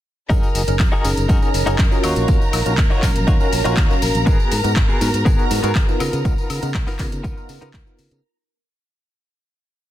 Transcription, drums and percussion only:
0.30 kick loud
0.30 closed hi-hat medium
0.30 tambourine soft
0.30 tambourine medium
0.43 tambourine soft
0.55 open hi-hat loud
0.55 tambourine medium
0.67 closed hi-hat medium
0.67 tambourine soft
0.79 kick loud
0.79 clap loud
0.79 closed hi-hat medium
0.79 tambourine medium
0.79 tambourine soft
0.79 high woodblock medium
0.92 tambourine soft
1.05 open hi-hat loud
1.05 tambourine medium
1.17 closed hi-hat medium
1.17 tambourine soft
1.29 kick loud
1.29 closed hi-hat medium
1.29 tambourine medium
1.29 tambourine soft
1.42 tambourine soft
1.54 open hi-hat loud
1.54 tambourine medium
1.67 closed hi-hat medium
1.67 tambourine soft
1.78 kick loud
1.78 clap loud
1.78 closed hi-hat medium
1.78 tambourine medium
1.78 tambourine soft
1.91 tambourine soft
2.04 open hi-hat loud
2.04 tambourine medium
2.04 high woodblock medium
2.16 closed hi-hat medium
2.16 tambourine soft
2.28 kick loud
2.28 closed hi-hat medium
2.28 tambourine medium
2.28 tambourine soft
2.41 tambourine soft
2.53 open hi-hat loud
2.53 tambourine loud
2.53 tambourine medium
2.53 high woodblock medium
2.66 closed hi-hat medium
2.66 tambourine soft
2.78 kick loud
2.78 clap loud
2.78 closed hi-hat medium
2.78 tambourine soft
2.78 tambourine medium
2.78 high woodblock medium
2.90 tambourine soft
3.02 kick medium
3.02 clap medium
3.02 open hi-hat loud
3.02 tambourine medium
3.02 tambourine loud
3.16 closed hi-hat medium
3.16 tambourine soft
3.28 kick loud
3.28 closed hi-hat medium
3.28 tambourine medium
3.28 tambourine soft
3.40 tambourine soft
3.52 open hi-hat loud
3.52 tambourine medium
3.65 closed hi-hat medium
3.65 tambourine soft
3.77 kick loud
3.77 clap loud
3.77 closed hi-hat medium
3.77 tambourine medium
3.77 tambourine soft
3.90 tambourine soft
4.02 open hi-hat loud
4.02 tambourine loud
4.02 tambourine medium
4.14 closed hi-hat medium
4.14 tambourine soft
4.26 kick loud
4.26 closed hi-hat medium
4.26 tambourine medium
4.26 tambourine soft
4.40 tambourine soft
4.52 open hi-hat loud
4.52 tambourine medium
4.64 closed hi-hat medium
4.64 tambourine soft
4.76 kick loud
4.76 clap loud
4.76 closed hi-hat medium
4.76 tambourine medium
4.76 tambourine soft
4.76 high woodblock medium
4.89 tambourine soft
5.01 open hi-hat loud
5.01 tambourine medium
5.14 closed hi-hat medium
5.14 tambourine soft
5.26 kick loud
5.26 closed hi-hat medium
5.26 tambourine soft
5.26 tambourine medium
5.39 tambourine soft
5.51 open hi-hat loud
5.51 tambourine loud
5.51 tambourine medium
5.63 closed hi-hat medium
5.63 tambourine soft
5.75 kick loud
5.75 clap loud
5.75 closed hi-hat medium
5.75 tambourine medium
5.75 tambourine soft
5.89 tambourine soft
6.00 open hi-hat loud
6.00 tambourine medium
6.00 high woodblock medium
6.13 closed hi-hat medium
6.13 tambourine soft
6.25 kick loud
6.25 closed hi-hat soft
6.25 tambourine soft
6.38 tambourine soft
6.50 open hi-hat loud
6.50 tambourine medium
6.50 high woodblock medium
6.63 closed hi-hat medium
6.63 tambourine soft
6.74 kick loud
6.74 clap loud
6.74 closed hi-hat medium
6.74 tambourine medium
6.74 tambourine soft
6.74 high woodblock medium
6.86 open hi-hat medium
6.86 tambourine soft
6.99 kick medium
6.99 clap medium
6.99 open hi-hat loud
6.99 tambourine medium
7.12 closed hi-hat medium
7.12 tambourine soft
7.24 kick loud
7.24 closed hi-hat soft
7.24 tambourine medium
7.24 tambourine soft
7.37 tambourine soft
7.49 open hi-hat loud
7.49 tambourine medium
7.62 closed hi-hat medium
7.62 tambourine soft
7.74 kick loud
7.74 clap loud
7.74 closed hi-hat medium
7.74 tambourine medium
7.74 tambourine soft
7.87 tambourine soft
7.99 open hi-hat loud
7.99 tambourine medium
7.99 tambourine loud
8.11 closed hi-hat medium
8.11 tambourine soft

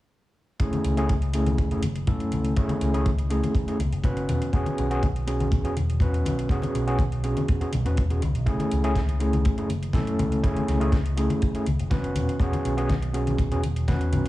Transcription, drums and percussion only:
0.60 kick medium
0.60 closed hi-hat medium
0.73 closed hi-hat soft
0.73 high conga medium
0.84 closed hi-hat medium
0.97 closed hi-hat soft
1.09 kick loud
1.09 closed hi-hat medium
1.09 high conga medium
1.22 closed hi-hat soft
1.34 closed hi-hat medium
1.46 closed hi-hat soft
1.46 high conga medium
1.58 kick loud
1.58 closed hi-hat medium
1.71 closed hi-hat soft
1.83 closed hi-hat medium
1.83 high conga medium
1.96 closed hi-hat soft
2.07 kick loud
2.07 closed hi-hat medium
2.07 low conga medium
2.20 closed hi-hat soft
2.32 closed hi-hat medium
2.32 high conga medium
2.45 closed hi-hat soft
2.57 kick loud
2.57 closed hi-hat medium
2.69 closed hi-hat soft
2.69 high conga medium
2.81 closed hi-hat medium
2.94 closed hi-hat soft
3.06 kick loud
3.06 closed hi-hat medium
3.06 high conga medium
3.18 closed hi-hat soft
3.30 closed hi-hat medium
3.43 closed hi-hat soft
3.43 high conga medium
3.55 kick loud
3.55 closed hi-hat medium
3.68 closed hi-hat soft
3.80 closed hi-hat medium
3.80 high conga medium
3.93 closed hi-hat soft
4.04 kick loud
4.04 closed hi-hat medium
4.04 low conga medium
4.17 closed hi-hat soft
4.29 closed hi-hat medium
4.29 high conga loud
4.42 closed hi-hat soft
4.53 kick loud
4.53 closed hi-hat medium
4.66 closed hi-hat soft
4.66 high conga medium
4.78 closed hi-hat medium
4.91 closed hi-hat soft
5.03 kick loud
5.03 closed hi-hat medium
5.03 high conga medium
5.16 closed hi-hat soft
5.28 closed hi-hat medium
5.40 closed hi-hat soft
5.40 high conga medium
5.52 kick loud
5.52 closed hi-hat medium
5.65 closed hi-hat soft
5.76 closed hi-hat medium
5.76 high conga medium
5.90 closed hi-hat soft
6.00 kick loud
6.00 closed hi-hat medium
6.00 low conga medium
6.14 closed hi-hat soft
6.26 closed hi-hat medium
6.26 high conga medium
6.39 closed hi-hat soft
6.49 kick loud
6.49 closed hi-hat medium
6.62 closed hi-hat soft
6.62 high conga medium
6.62 low conga medium
6.75 closed hi-hat medium
6.88 closed hi-hat soft
6.99 kick loud
6.99 closed hi-hat medium
6.99 high conga medium
7.12 closed hi-hat soft
7.24 closed hi-hat medium
7.37 closed hi-hat soft
7.37 high conga medium
7.48 kick loud
7.48 closed hi-hat medium
7.61 closed hi-hat soft
7.72 closed hi-hat medium
7.72 high conga medium
7.72 low conga medium
7.86 closed hi-hat soft
7.97 kick loud
7.97 closed hi-hat medium
7.97 low conga medium
8.10 closed hi-hat soft
8.22 closed hi-hat medium
8.22 high conga medium
8.35 closed hi-hat soft
8.47 kick medium
8.47 closed hi-hat medium
8.60 closed hi-hat soft
8.60 high conga medium
8.71 closed hi-hat medium
8.84 closed hi-hat soft
8.96 kick loud
8.96 snare loud
8.96 closed hi-hat medium
8.96 high conga medium
9.09 closed hi-hat soft
9.20 closed hi-hat medium
9.33 closed hi-hat soft
9.33 high conga medium
9.45 kick loud
9.45 closed hi-hat medium
9.58 closed hi-hat soft
9.69 closed hi-hat medium
9.69 high conga medium
9.83 closed hi-hat soft
9.93 kick loud
9.93 snare loud
9.93 closed hi-hat medium
9.93 low conga medium
10.07 closed hi-hat soft
10.19 closed hi-hat medium
10.19 high conga medium
10.32 closed hi-hat soft
10.44 kick loud
10.44 closed hi-hat medium
10.57 closed hi-hat soft
10.57 high conga medium
10.68 snare medium
10.68 closed hi-hat medium
10.81 closed hi-hat soft
10.92 kick loud
10.92 snare loud
10.92 closed hi-hat medium
10.92 high conga medium
11.06 closed hi-hat soft
11.17 closed hi-hat medium
11.30 closed hi-hat soft
11.30 high conga medium
11.42 kick medium
11.42 closed hi-hat medium
11.55 closed hi-hat soft
11.66 closed hi-hat medium
11.66 high conga medium
11.80 closed hi-hat soft
11.91 kick loud
11.91 snare loud
11.91 closed hi-hat medium
11.91 low conga medium
12.04 closed hi-hat soft
12.15 closed hi-hat medium
12.15 high conga medium
12.29 closed hi-hat soft
12.40 kick loud
12.40 closed hi-hat medium
12.53 closed hi-hat soft
12.53 high conga medium
12.65 closed hi-hat medium
12.78 closed hi-hat soft
12.89 kick medium
12.89 snare loud
12.89 closed hi-hat medium
12.89 high conga medium
13.02 closed hi-hat soft
13.14 closed hi-hat medium
13.27 closed hi-hat soft
13.27 high conga medium
13.38 kick loud
13.38 closed hi-hat medium
13.52 closed hi-hat soft
13.63 closed hi-hat medium
13.63 high conga medium
13.76 closed hi-hat soft
13.88 kick medium
13.88 snare loud
13.88 closed hi-hat medium
13.88 low conga medium
14.01 closed hi-hat soft
14.13 closed hi-hat medium
14.13 high conga medium

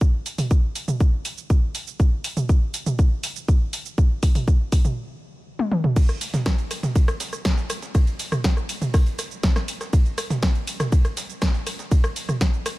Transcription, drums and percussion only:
0.01 kick loud
0.01 shaker soft
0.26 open hi-hat loud
0.26 shaker medium
0.38 mid tom medium
0.38 open hi-hat medium
0.38 shaker soft
0.51 kick loud
0.51 shaker soft
0.76 open hi-hat loud
0.76 shaker medium
0.88 mid tom medium
0.88 shaker soft
1.00 kick loud
1.00 shaker soft
1.25 open hi-hat loud
1.25 shaker medium
1.38 shaker soft
1.50 kick loud
1.50 shaker soft
1.75 open hi-hat loud
1.75 shaker medium
1.87 shaker soft
2.00 kick loud
2.00 shaker soft
2.24 open hi-hat loud
2.24 shaker medium
2.37 mid tom medium
2.37 shaker soft
2.49 kick loud
2.49 shaker soft
2.74 open hi-hat loud
2.74 shaker medium
2.86 mid tom medium
2.86 shaker soft
2.99 kick loud
2.99 shaker soft
3.23 open hi-hat loud
3.23 shaker medium
3.36 shaker soft
3.48 kick loud
3.48 shaker soft
3.73 open hi-hat loud
3.73 shaker medium
3.86 shaker soft
3.98 kick loud
3.98 shaker soft
4.23 kick loud
4.23 open hi-hat loud
4.23 shaker medium
4.35 mid tom medium
4.35 open hi-hat medium
4.35 shaker soft
4.47 kick loud
4.47 shaker soft
4.72 kick loud
4.72 open hi-hat loud
4.72 shaker medium
4.85 mid tom medium
4.85 shaker soft
5.59 high tom medium
5.71 mid tom medium
5.84 mid tom medium
5.96 kick loud
5.96 ride medium
5.96 crash loud
5.96 shaker soft
6.09 cross-stick soft
6.09 shaker soft
6.21 open hi-hat loud
6.21 ride medium
6.21 shaker medium
6.34 snare medium
6.34 mid tom medium
6.34 shaker soft
6.46 kick loud
6.46 cross-stick medium
6.46 snare loud
6.46 ride medium
6.46 shaker soft
6.58 ride soft
6.58 shaker soft
6.71 cross-stick medium
6.71 open hi-hat loud
6.71 ride medium
6.71 shaker medium
6.83 snare soft
6.83 mid tom medium
6.83 shaker soft
6.96 kick loud
6.96 ride medium
6.96 shaker soft
7.08 cross-stick medium
7.08 ride soft
7.08 shaker soft
7.20 snare soft
7.20 open hi-hat loud
7.20 ride medium
7.20 shaker medium
7.33 cross-stick medium
7.33 shaker soft
7.45 kick loud
7.45 snare loud
7.45 ride medium
7.45 shaker soft
7.58 snare soft
7.58 shaker soft
7.70 cross-stick medium
7.70 open hi-hat loud
7.70 ride medium
7.70 shaker medium
7.82 snare soft
7.82 shaker soft
7.95 kick loud
7.95 cross-stick soft
7.95 ride medium
7.95 shaker soft
8.07 ride soft
8.07 shaker soft
8.19 open hi-hat loud
8.19 ride medium
8.19 shaker medium
8.32 cross-stick medium
8.32 mid tom medium
8.32 shaker soft
8.44 kick loud
8.44 snare loud
8.44 ride medium
8.44 shaker soft
8.57 cross-stick medium
8.57 shaker soft
8.69 open hi-hat loud
8.69 ride medium
8.69 shaker medium
8.82 mid tom medium
8.82 ride soft
8.82 shaker soft
8.94 kick loud
8.94 cross-stick medium
8.94 open hi-hat medium
8.94 shaker soft
9.06 ride soft
9.06 shaker soft
9.19 cross-stick medium
9.19 open hi-hat loud
9.19 ride medium
9.19 shaker medium
9.31 shaker soft
9.43 kick loud
9.43 snare loud
9.43 ride medium
9.43 shaker soft
9.56 cross-stick medium
9.56 snare soft
9.56 shaker soft
9.68 open hi-hat loud
9.68 ride medium
9.68 shaker medium
9.81 cross-stick soft
9.81 snare soft
9.81 shaker soft
9.93 kick loud
9.93 ride medium
9.93 shaker soft
10.06 shaker soft
10.18 cross-stick medium
10.18 open hi-hat loud
10.18 ride medium
10.18 shaker medium
10.30 snare soft
10.30 mid tom medium
10.30 shaker soft
10.43 kick loud
10.43 cross-stick medium
10.43 snare loud
10.43 ride medium
10.43 shaker soft
10.55 ride soft
10.55 shaker soft
10.67 open hi-hat loud
10.67 ride medium
10.67 shaker medium
10.80 cross-stick medium
10.80 snare soft
10.80 mid tom medium
10.80 shaker soft
10.92 kick loud
10.92 ride medium
10.92 shaker soft
11.05 cross-stick medium
11.05 ride soft
11.05 shaker soft
11.17 snare soft
11.17 open hi-hat loud
11.17 ride medium
11.17 shaker medium
11.29 shaker soft
11.42 kick loud
11.42 cross-stick medium
11.42 snare loud
11.42 ride medium
11.42 shaker soft
11.54 snare soft
11.54 shaker soft
11.67 cross-stick medium
11.67 open hi-hat loud
11.67 ride medium
11.67 shaker medium
11.79 snare soft
11.79 shaker soft
11.91 kick loud
11.91 ride medium
11.91 shaker soft
12.04 cross-stick medium
12.04 ride soft
12.04 shaker soft
12.16 open hi-hat loud
12.16 ride medium
12.16 shaker medium
12.29 cross-stick medium
12.29 mid tom medium
12.29 shaker soft
12.41 kick loud
12.41 snare loud
12.41 ride medium
12.41 shaker soft
12.54 shaker soft
12.66 cross-stick medium
12.66 open hi-hat loud
12.66 ride medium
12.66 shaker medium

